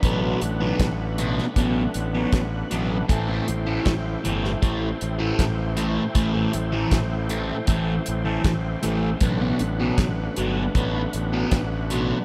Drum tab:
HH |x-x-x-x-x-x-x-x-|x-x-x-x-x-x-x-x-|x-x-x-x-x-x-x-x-|x-x-x-x-x-x-x-x-|
SD |----o--o----o---|----o--o----o---|----o-------o---|----o-------o---|
BD |o---o---o---o---|o---o---o---o---|o---o---o---o---|o---o---o---o---|